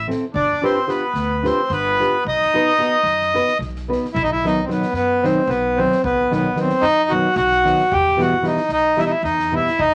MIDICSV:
0, 0, Header, 1, 6, 480
1, 0, Start_track
1, 0, Tempo, 545951
1, 309, Time_signature, 7, 3, 24, 8
1, 3665, Tempo, 535236
1, 8841, End_track
2, 0, Start_track
2, 0, Title_t, "Accordion"
2, 0, Program_c, 0, 21
2, 306, Note_on_c, 0, 74, 84
2, 566, Note_off_c, 0, 74, 0
2, 569, Note_on_c, 0, 72, 72
2, 784, Note_on_c, 0, 71, 68
2, 794, Note_off_c, 0, 72, 0
2, 1280, Note_on_c, 0, 72, 74
2, 1288, Note_off_c, 0, 71, 0
2, 1511, Note_off_c, 0, 72, 0
2, 1515, Note_on_c, 0, 71, 97
2, 1968, Note_off_c, 0, 71, 0
2, 2006, Note_on_c, 0, 75, 118
2, 3146, Note_off_c, 0, 75, 0
2, 3638, Note_on_c, 0, 64, 93
2, 3716, Note_off_c, 0, 64, 0
2, 3721, Note_on_c, 0, 63, 88
2, 3787, Note_off_c, 0, 63, 0
2, 3802, Note_on_c, 0, 64, 94
2, 3925, Note_off_c, 0, 64, 0
2, 3929, Note_on_c, 0, 63, 88
2, 4093, Note_on_c, 0, 60, 63
2, 4095, Note_off_c, 0, 63, 0
2, 4144, Note_off_c, 0, 60, 0
2, 4157, Note_on_c, 0, 59, 72
2, 4354, Note_off_c, 0, 59, 0
2, 4368, Note_on_c, 0, 59, 96
2, 4617, Note_on_c, 0, 60, 90
2, 4640, Note_off_c, 0, 59, 0
2, 4847, Note_on_c, 0, 59, 92
2, 4859, Note_off_c, 0, 60, 0
2, 5098, Note_on_c, 0, 60, 100
2, 5128, Note_off_c, 0, 59, 0
2, 5322, Note_off_c, 0, 60, 0
2, 5346, Note_on_c, 0, 59, 104
2, 5600, Note_off_c, 0, 59, 0
2, 5613, Note_on_c, 0, 59, 92
2, 5836, Note_off_c, 0, 59, 0
2, 5845, Note_on_c, 0, 60, 86
2, 6038, Note_on_c, 0, 63, 124
2, 6062, Note_off_c, 0, 60, 0
2, 6290, Note_on_c, 0, 66, 103
2, 6315, Note_off_c, 0, 63, 0
2, 6518, Note_off_c, 0, 66, 0
2, 6532, Note_on_c, 0, 66, 111
2, 7036, Note_on_c, 0, 67, 108
2, 7042, Note_off_c, 0, 66, 0
2, 7289, Note_off_c, 0, 67, 0
2, 7292, Note_on_c, 0, 66, 94
2, 7513, Note_off_c, 0, 66, 0
2, 7518, Note_on_c, 0, 63, 79
2, 7736, Note_off_c, 0, 63, 0
2, 7754, Note_on_c, 0, 63, 105
2, 7986, Note_on_c, 0, 64, 91
2, 8010, Note_off_c, 0, 63, 0
2, 8039, Note_off_c, 0, 64, 0
2, 8050, Note_on_c, 0, 63, 82
2, 8085, Note_on_c, 0, 64, 89
2, 8103, Note_off_c, 0, 63, 0
2, 8197, Note_off_c, 0, 64, 0
2, 8212, Note_on_c, 0, 63, 95
2, 8485, Note_off_c, 0, 63, 0
2, 8496, Note_on_c, 0, 64, 96
2, 8712, Note_on_c, 0, 63, 111
2, 8720, Note_off_c, 0, 64, 0
2, 8841, Note_off_c, 0, 63, 0
2, 8841, End_track
3, 0, Start_track
3, 0, Title_t, "Trumpet"
3, 0, Program_c, 1, 56
3, 300, Note_on_c, 1, 62, 100
3, 537, Note_off_c, 1, 62, 0
3, 563, Note_on_c, 1, 60, 78
3, 769, Note_off_c, 1, 60, 0
3, 776, Note_on_c, 1, 59, 78
3, 1235, Note_off_c, 1, 59, 0
3, 1282, Note_on_c, 1, 60, 62
3, 1490, Note_off_c, 1, 60, 0
3, 1506, Note_on_c, 1, 59, 79
3, 1963, Note_off_c, 1, 59, 0
3, 1992, Note_on_c, 1, 63, 97
3, 3139, Note_off_c, 1, 63, 0
3, 8841, End_track
4, 0, Start_track
4, 0, Title_t, "Nylon-string guitar"
4, 0, Program_c, 2, 24
4, 68, Note_on_c, 2, 60, 77
4, 74, Note_on_c, 2, 64, 66
4, 78, Note_on_c, 2, 69, 64
4, 87, Note_on_c, 2, 72, 71
4, 210, Note_off_c, 2, 60, 0
4, 213, Note_off_c, 2, 64, 0
4, 214, Note_off_c, 2, 69, 0
4, 220, Note_off_c, 2, 72, 0
4, 542, Note_on_c, 2, 62, 73
4, 548, Note_on_c, 2, 65, 67
4, 558, Note_on_c, 2, 67, 66
4, 559, Note_on_c, 2, 71, 83
4, 684, Note_off_c, 2, 62, 0
4, 687, Note_off_c, 2, 65, 0
4, 691, Note_off_c, 2, 71, 0
4, 693, Note_off_c, 2, 67, 0
4, 766, Note_on_c, 2, 62, 51
4, 770, Note_on_c, 2, 65, 45
4, 772, Note_on_c, 2, 67, 51
4, 777, Note_on_c, 2, 71, 65
4, 907, Note_off_c, 2, 62, 0
4, 909, Note_off_c, 2, 65, 0
4, 909, Note_off_c, 2, 67, 0
4, 913, Note_off_c, 2, 71, 0
4, 1256, Note_on_c, 2, 62, 66
4, 1266, Note_on_c, 2, 65, 57
4, 1276, Note_on_c, 2, 67, 56
4, 1277, Note_on_c, 2, 71, 71
4, 1400, Note_off_c, 2, 62, 0
4, 1405, Note_off_c, 2, 65, 0
4, 1410, Note_off_c, 2, 67, 0
4, 1410, Note_off_c, 2, 71, 0
4, 1750, Note_on_c, 2, 62, 65
4, 1755, Note_on_c, 2, 65, 59
4, 1759, Note_on_c, 2, 67, 55
4, 1767, Note_on_c, 2, 71, 61
4, 1894, Note_off_c, 2, 62, 0
4, 1897, Note_off_c, 2, 65, 0
4, 1899, Note_off_c, 2, 67, 0
4, 1903, Note_off_c, 2, 71, 0
4, 2229, Note_on_c, 2, 59, 64
4, 2234, Note_on_c, 2, 66, 58
4, 2238, Note_on_c, 2, 63, 67
4, 2247, Note_on_c, 2, 71, 83
4, 2368, Note_off_c, 2, 59, 0
4, 2370, Note_off_c, 2, 66, 0
4, 2373, Note_off_c, 2, 63, 0
4, 2377, Note_off_c, 2, 71, 0
4, 2448, Note_on_c, 2, 59, 50
4, 2455, Note_on_c, 2, 63, 52
4, 2462, Note_on_c, 2, 66, 52
4, 2465, Note_on_c, 2, 71, 65
4, 2588, Note_off_c, 2, 59, 0
4, 2591, Note_off_c, 2, 63, 0
4, 2595, Note_off_c, 2, 66, 0
4, 2595, Note_off_c, 2, 71, 0
4, 2935, Note_on_c, 2, 59, 67
4, 2940, Note_on_c, 2, 63, 66
4, 2943, Note_on_c, 2, 66, 62
4, 2949, Note_on_c, 2, 71, 73
4, 3077, Note_off_c, 2, 59, 0
4, 3078, Note_off_c, 2, 63, 0
4, 3081, Note_off_c, 2, 66, 0
4, 3084, Note_off_c, 2, 71, 0
4, 3415, Note_on_c, 2, 59, 70
4, 3420, Note_on_c, 2, 63, 67
4, 3423, Note_on_c, 2, 66, 64
4, 3428, Note_on_c, 2, 71, 77
4, 3562, Note_off_c, 2, 59, 0
4, 3563, Note_off_c, 2, 63, 0
4, 3566, Note_off_c, 2, 66, 0
4, 3567, Note_off_c, 2, 71, 0
4, 3905, Note_on_c, 2, 47, 69
4, 3911, Note_on_c, 2, 51, 68
4, 3913, Note_on_c, 2, 54, 73
4, 3919, Note_on_c, 2, 59, 74
4, 3926, Note_on_c, 2, 63, 81
4, 4044, Note_off_c, 2, 47, 0
4, 4045, Note_off_c, 2, 51, 0
4, 4047, Note_off_c, 2, 54, 0
4, 4050, Note_off_c, 2, 59, 0
4, 4054, Note_off_c, 2, 63, 0
4, 4118, Note_on_c, 2, 47, 63
4, 4125, Note_on_c, 2, 51, 56
4, 4129, Note_on_c, 2, 54, 66
4, 4130, Note_on_c, 2, 59, 59
4, 4136, Note_on_c, 2, 63, 75
4, 4261, Note_off_c, 2, 47, 0
4, 4265, Note_off_c, 2, 51, 0
4, 4266, Note_off_c, 2, 54, 0
4, 4267, Note_off_c, 2, 59, 0
4, 4270, Note_off_c, 2, 63, 0
4, 4615, Note_on_c, 2, 47, 72
4, 4622, Note_on_c, 2, 51, 62
4, 4628, Note_on_c, 2, 54, 65
4, 4635, Note_on_c, 2, 59, 59
4, 4636, Note_on_c, 2, 63, 77
4, 4758, Note_off_c, 2, 47, 0
4, 4762, Note_off_c, 2, 51, 0
4, 4763, Note_off_c, 2, 54, 0
4, 4767, Note_off_c, 2, 59, 0
4, 4769, Note_off_c, 2, 63, 0
4, 5109, Note_on_c, 2, 47, 60
4, 5116, Note_on_c, 2, 51, 66
4, 5119, Note_on_c, 2, 54, 66
4, 5123, Note_on_c, 2, 59, 49
4, 5123, Note_on_c, 2, 63, 65
4, 5253, Note_off_c, 2, 47, 0
4, 5256, Note_off_c, 2, 51, 0
4, 5256, Note_off_c, 2, 54, 0
4, 5258, Note_off_c, 2, 59, 0
4, 5260, Note_off_c, 2, 63, 0
4, 5581, Note_on_c, 2, 47, 78
4, 5586, Note_on_c, 2, 51, 81
4, 5588, Note_on_c, 2, 54, 70
4, 5594, Note_on_c, 2, 63, 87
4, 5598, Note_on_c, 2, 59, 78
4, 5724, Note_off_c, 2, 47, 0
4, 5725, Note_off_c, 2, 51, 0
4, 5726, Note_off_c, 2, 54, 0
4, 5730, Note_off_c, 2, 59, 0
4, 5730, Note_off_c, 2, 63, 0
4, 5799, Note_on_c, 2, 47, 62
4, 5805, Note_on_c, 2, 51, 56
4, 5813, Note_on_c, 2, 54, 61
4, 5819, Note_on_c, 2, 59, 63
4, 5819, Note_on_c, 2, 63, 67
4, 5943, Note_off_c, 2, 47, 0
4, 5946, Note_off_c, 2, 51, 0
4, 5950, Note_off_c, 2, 54, 0
4, 5952, Note_off_c, 2, 59, 0
4, 5953, Note_off_c, 2, 63, 0
4, 6295, Note_on_c, 2, 47, 64
4, 6300, Note_on_c, 2, 51, 57
4, 6306, Note_on_c, 2, 59, 58
4, 6307, Note_on_c, 2, 54, 63
4, 6314, Note_on_c, 2, 63, 81
4, 6438, Note_off_c, 2, 47, 0
4, 6441, Note_off_c, 2, 51, 0
4, 6442, Note_off_c, 2, 54, 0
4, 6444, Note_off_c, 2, 59, 0
4, 6448, Note_off_c, 2, 63, 0
4, 6780, Note_on_c, 2, 47, 68
4, 6782, Note_on_c, 2, 51, 67
4, 6785, Note_on_c, 2, 54, 55
4, 6792, Note_on_c, 2, 59, 54
4, 6795, Note_on_c, 2, 63, 82
4, 6926, Note_off_c, 2, 51, 0
4, 6927, Note_off_c, 2, 47, 0
4, 6930, Note_off_c, 2, 54, 0
4, 6931, Note_off_c, 2, 59, 0
4, 6934, Note_off_c, 2, 63, 0
4, 7253, Note_on_c, 2, 47, 83
4, 7256, Note_on_c, 2, 52, 82
4, 7260, Note_on_c, 2, 59, 79
4, 7264, Note_on_c, 2, 55, 71
4, 7273, Note_on_c, 2, 64, 89
4, 7397, Note_off_c, 2, 47, 0
4, 7399, Note_off_c, 2, 52, 0
4, 7401, Note_off_c, 2, 59, 0
4, 7403, Note_off_c, 2, 55, 0
4, 7407, Note_off_c, 2, 64, 0
4, 7473, Note_on_c, 2, 47, 61
4, 7484, Note_on_c, 2, 52, 64
4, 7485, Note_on_c, 2, 55, 57
4, 7491, Note_on_c, 2, 59, 51
4, 7495, Note_on_c, 2, 64, 70
4, 7618, Note_off_c, 2, 47, 0
4, 7623, Note_off_c, 2, 55, 0
4, 7624, Note_off_c, 2, 52, 0
4, 7627, Note_off_c, 2, 59, 0
4, 7628, Note_off_c, 2, 64, 0
4, 7966, Note_on_c, 2, 47, 62
4, 7969, Note_on_c, 2, 52, 66
4, 7973, Note_on_c, 2, 55, 55
4, 7974, Note_on_c, 2, 59, 58
4, 7980, Note_on_c, 2, 64, 74
4, 8111, Note_off_c, 2, 47, 0
4, 8113, Note_off_c, 2, 52, 0
4, 8113, Note_off_c, 2, 55, 0
4, 8116, Note_off_c, 2, 59, 0
4, 8116, Note_off_c, 2, 64, 0
4, 8460, Note_on_c, 2, 47, 62
4, 8461, Note_on_c, 2, 52, 67
4, 8467, Note_on_c, 2, 55, 58
4, 8471, Note_on_c, 2, 59, 52
4, 8478, Note_on_c, 2, 64, 75
4, 8604, Note_off_c, 2, 47, 0
4, 8604, Note_off_c, 2, 52, 0
4, 8607, Note_off_c, 2, 55, 0
4, 8609, Note_off_c, 2, 59, 0
4, 8613, Note_off_c, 2, 64, 0
4, 8841, End_track
5, 0, Start_track
5, 0, Title_t, "Upright bass"
5, 0, Program_c, 3, 32
5, 0, Note_on_c, 3, 33, 92
5, 110, Note_off_c, 3, 33, 0
5, 298, Note_on_c, 3, 31, 94
5, 452, Note_off_c, 3, 31, 0
5, 998, Note_on_c, 3, 38, 83
5, 1298, Note_off_c, 3, 38, 0
5, 1493, Note_on_c, 3, 31, 110
5, 1792, Note_off_c, 3, 31, 0
5, 1977, Note_on_c, 3, 35, 90
5, 2132, Note_off_c, 3, 35, 0
5, 2666, Note_on_c, 3, 42, 93
5, 2966, Note_off_c, 3, 42, 0
5, 3157, Note_on_c, 3, 35, 89
5, 3456, Note_off_c, 3, 35, 0
5, 3644, Note_on_c, 3, 35, 97
5, 4068, Note_off_c, 3, 35, 0
5, 4341, Note_on_c, 3, 42, 90
5, 4645, Note_off_c, 3, 42, 0
5, 4836, Note_on_c, 3, 35, 112
5, 5139, Note_off_c, 3, 35, 0
5, 5338, Note_on_c, 3, 35, 95
5, 5758, Note_off_c, 3, 35, 0
5, 6033, Note_on_c, 3, 42, 90
5, 6332, Note_off_c, 3, 42, 0
5, 6525, Note_on_c, 3, 35, 125
5, 6825, Note_off_c, 3, 35, 0
5, 7031, Note_on_c, 3, 40, 93
5, 7445, Note_off_c, 3, 40, 0
5, 7718, Note_on_c, 3, 35, 86
5, 8014, Note_off_c, 3, 35, 0
5, 8201, Note_on_c, 3, 40, 115
5, 8500, Note_off_c, 3, 40, 0
5, 8702, Note_on_c, 3, 40, 79
5, 8841, Note_off_c, 3, 40, 0
5, 8841, End_track
6, 0, Start_track
6, 0, Title_t, "Drums"
6, 89, Note_on_c, 9, 38, 32
6, 177, Note_off_c, 9, 38, 0
6, 314, Note_on_c, 9, 36, 88
6, 402, Note_off_c, 9, 36, 0
6, 565, Note_on_c, 9, 38, 27
6, 653, Note_off_c, 9, 38, 0
6, 780, Note_on_c, 9, 38, 29
6, 868, Note_off_c, 9, 38, 0
6, 1004, Note_on_c, 9, 38, 31
6, 1092, Note_off_c, 9, 38, 0
6, 1272, Note_on_c, 9, 38, 27
6, 1360, Note_off_c, 9, 38, 0
6, 1502, Note_on_c, 9, 38, 24
6, 1590, Note_off_c, 9, 38, 0
6, 1770, Note_on_c, 9, 38, 30
6, 1858, Note_off_c, 9, 38, 0
6, 1993, Note_on_c, 9, 36, 83
6, 2080, Note_off_c, 9, 36, 0
6, 2125, Note_on_c, 9, 38, 26
6, 2213, Note_off_c, 9, 38, 0
6, 2244, Note_on_c, 9, 38, 20
6, 2332, Note_off_c, 9, 38, 0
6, 2359, Note_on_c, 9, 38, 24
6, 2447, Note_off_c, 9, 38, 0
6, 2469, Note_on_c, 9, 38, 28
6, 2557, Note_off_c, 9, 38, 0
6, 2681, Note_on_c, 9, 38, 27
6, 2768, Note_off_c, 9, 38, 0
6, 2823, Note_on_c, 9, 38, 23
6, 2911, Note_off_c, 9, 38, 0
6, 2949, Note_on_c, 9, 38, 23
6, 3037, Note_off_c, 9, 38, 0
6, 3056, Note_on_c, 9, 38, 23
6, 3144, Note_off_c, 9, 38, 0
6, 3169, Note_on_c, 9, 36, 59
6, 3173, Note_on_c, 9, 38, 25
6, 3257, Note_off_c, 9, 36, 0
6, 3261, Note_off_c, 9, 38, 0
6, 3303, Note_on_c, 9, 38, 24
6, 3390, Note_off_c, 9, 38, 0
6, 3445, Note_on_c, 9, 38, 28
6, 3532, Note_off_c, 9, 38, 0
6, 3558, Note_on_c, 9, 38, 24
6, 3646, Note_off_c, 9, 38, 0
6, 3661, Note_on_c, 9, 36, 108
6, 3750, Note_off_c, 9, 36, 0
6, 3919, Note_on_c, 9, 38, 28
6, 4008, Note_off_c, 9, 38, 0
6, 4141, Note_on_c, 9, 38, 32
6, 4230, Note_off_c, 9, 38, 0
6, 4249, Note_on_c, 9, 38, 29
6, 4339, Note_off_c, 9, 38, 0
6, 4354, Note_on_c, 9, 38, 34
6, 4444, Note_off_c, 9, 38, 0
6, 4628, Note_on_c, 9, 38, 28
6, 4717, Note_off_c, 9, 38, 0
6, 4855, Note_on_c, 9, 38, 28
6, 4945, Note_off_c, 9, 38, 0
6, 5232, Note_on_c, 9, 38, 30
6, 5322, Note_off_c, 9, 38, 0
6, 5345, Note_on_c, 9, 36, 104
6, 5435, Note_off_c, 9, 36, 0
6, 5591, Note_on_c, 9, 38, 33
6, 5681, Note_off_c, 9, 38, 0
6, 5811, Note_on_c, 9, 38, 35
6, 5900, Note_off_c, 9, 38, 0
6, 5929, Note_on_c, 9, 38, 27
6, 6019, Note_off_c, 9, 38, 0
6, 6041, Note_on_c, 9, 38, 33
6, 6131, Note_off_c, 9, 38, 0
6, 6527, Note_on_c, 9, 38, 32
6, 6617, Note_off_c, 9, 38, 0
6, 6665, Note_on_c, 9, 38, 32
6, 6755, Note_off_c, 9, 38, 0
6, 6793, Note_on_c, 9, 38, 37
6, 6882, Note_off_c, 9, 38, 0
6, 6908, Note_on_c, 9, 38, 27
6, 6997, Note_off_c, 9, 38, 0
6, 7027, Note_on_c, 9, 36, 100
6, 7117, Note_off_c, 9, 36, 0
6, 7274, Note_on_c, 9, 38, 31
6, 7364, Note_off_c, 9, 38, 0
6, 7495, Note_on_c, 9, 38, 33
6, 7585, Note_off_c, 9, 38, 0
6, 7608, Note_on_c, 9, 38, 27
6, 7697, Note_off_c, 9, 38, 0
6, 7715, Note_on_c, 9, 38, 34
6, 7805, Note_off_c, 9, 38, 0
6, 7989, Note_on_c, 9, 38, 30
6, 8079, Note_off_c, 9, 38, 0
6, 8212, Note_on_c, 9, 38, 28
6, 8302, Note_off_c, 9, 38, 0
6, 8347, Note_on_c, 9, 38, 33
6, 8437, Note_off_c, 9, 38, 0
6, 8599, Note_on_c, 9, 38, 27
6, 8689, Note_off_c, 9, 38, 0
6, 8710, Note_on_c, 9, 36, 96
6, 8799, Note_off_c, 9, 36, 0
6, 8841, End_track
0, 0, End_of_file